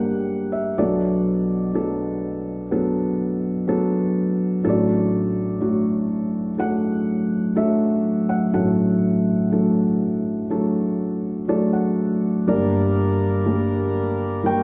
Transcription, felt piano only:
0.00 0.73 G1 medium
0.00 0.73 G2 medium
0.00 0.78 G3 medium
0.00 0.78 A#3 medium
0.00 0.78 D4 medium
0.00 0.78 A#4 medium
0.00 0.47 F#5 medium
0.00 0.79 G5 medium
0.52 0.77 E5 medium
0.78 4.61 B1 medium
0.78 4.61 B2 medium
0.78 1.66 F#3 medium
0.78 1.67 B3 medium
0.78 1.67 D4 medium
0.78 1.67 A4 medium
0.78 1.70 D5 medium
1.74 2.63 F#3 medium
1.74 2.63 B3 medium
1.74 2.63 D4 medium
1.74 2.64 A4 medium
2.71 3.60 F#3 medium
2.71 3.60 B3 medium
2.71 3.60 D4 medium
2.71 3.60 A4 medium
3.67 4.56 F#3 medium
3.67 4.56 B3 medium
3.67 4.57 D4 medium
3.67 4.57 A4 medium
4.64 8.49 A1 medium
4.64 8.49 A2 medium
4.64 5.53 F#3 medium
4.64 5.53 A3 medium
4.64 5.53 D4 medium
4.64 5.53 A4 medium
4.69 5.60 F#4 medium
4.69 6.66 D5 medium
5.60 6.50 F#3 medium
5.60 6.50 A3 medium
5.60 6.50 D4 medium
5.60 6.50 F#4 medium
6.57 7.47 F#3 medium
6.57 7.47 A3 medium
6.57 7.48 D4 medium
6.57 7.48 A4 medium
6.57 7.59 F#5 medium
7.55 8.45 F#3 medium
7.55 8.45 A3 medium
7.55 8.45 D4 medium
7.55 8.45 A4 medium
7.55 8.31 E5 medium
8.29 8.51 F#5 medium
8.53 12.43 A1 medium
8.53 12.43 A2 medium
8.53 9.43 F#3 medium
8.53 9.43 A3 medium
8.53 9.43 D4 medium
8.53 9.43 A4 medium
8.53 9.47 F#5 medium
9.51 10.41 F#3 medium
9.51 10.41 A3 soft
9.51 10.42 D4 medium
9.51 10.42 A4 medium
10.50 11.40 F#3 medium
10.50 11.40 A3 medium
10.50 11.40 D4 medium
10.50 11.41 A4 medium
11.48 12.39 F#3 medium
11.48 12.39 A3 medium
11.48 12.39 D4 medium
11.48 12.39 A4 medium
11.48 11.71 D5 medium
11.73 12.43 F#5 medium
12.47 14.63 G1 medium
12.47 14.63 G2 medium
12.47 13.37 G3 medium
12.47 13.37 A#3 medium
12.47 13.38 D4 medium
12.47 13.38 A#4 medium
12.47 14.49 D5 medium
13.46 14.35 G3 medium
13.46 14.35 A#3 medium
13.46 14.36 D4 medium
13.46 14.36 A#4 medium
14.43 14.63 G3 medium
14.43 14.63 A#3 medium
14.43 14.63 D4 medium
14.43 14.63 A#4 medium
14.43 14.63 G5 medium

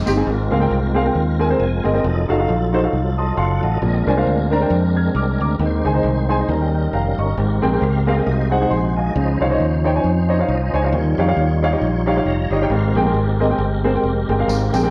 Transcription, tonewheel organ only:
0.00 0.23 G#3 medium
0.00 0.23 C4 medium
0.00 0.23 D#4 medium
0.26 2.00 G#3 medium
0.26 2.00 C4 medium
0.26 2.01 F4 medium
0.26 2.00 A#4 medium
1.60 1.84 G#5 medium
1.85 2.27 D#5 medium
2.04 3.79 F#3 medium
2.04 3.78 D#4 medium
2.04 3.78 F4 medium
2.04 3.79 A4 medium
3.19 3.37 D#5 medium
3.37 3.61 F#5 medium
3.63 4.05 D#5 medium
3.82 5.56 G#3 medium
3.82 5.56 C4 medium
3.82 5.56 D4 medium
3.82 5.56 A#4 medium
5.59 6.47 G#3 medium
5.59 6.47 C4 medium
5.59 6.47 D#4 medium
5.59 5.66 B4 medium
5.65 6.49 C5 medium
6.49 7.36 G3 medium
6.49 7.36 C#4 medium
6.49 7.36 D#4 medium
6.49 7.36 A#4 medium
7.37 8.24 G#3 medium
7.37 8.25 C4 medium
7.37 8.25 G4 medium
7.37 8.24 A#4 medium
7.63 7.81 C5 medium
7.81 8.05 F5 medium
8.06 8.49 D#5 medium
8.26 9.13 G#3 medium
8.26 9.13 D#4 medium
8.26 9.13 F#4 medium
8.26 8.32 A#4 medium
8.31 8.54 C5 medium
8.51 8.69 G#4 medium
8.70 8.94 C5 medium
8.96 9.38 D#5 medium
9.15 10.89 F3 medium
9.15 10.89 C#4 medium
9.15 10.89 D#4 medium
9.15 10.89 C5 medium
10.49 10.90 D#5 medium
10.92 12.67 G3 medium
10.92 12.67 D#4 medium
10.92 12.67 F4 medium
10.92 12.67 C#5 medium
12.27 12.51 A#5 medium
12.51 12.93 F5 medium
12.70 14.90 G#3 medium
12.70 14.90 C4 medium
12.70 14.90 G4 medium
12.70 14.90 A#4 medium

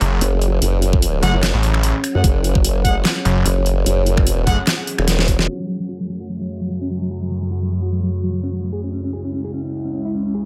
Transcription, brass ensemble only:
1.23 1.33 A3 loud
1.23 1.33 G#4 medium
1.23 1.33 F#5 loud
2.15 2.24 A3 medium
2.15 2.24 G#4 medium
2.15 2.24 F#5 medium
2.85 2.95 A3 medium
2.85 2.95 G#4 medium
2.85 2.95 F#5 loud
4.47 4.57 A3 loud
4.47 4.57 G#4 medium
4.47 4.57 F#5 loud

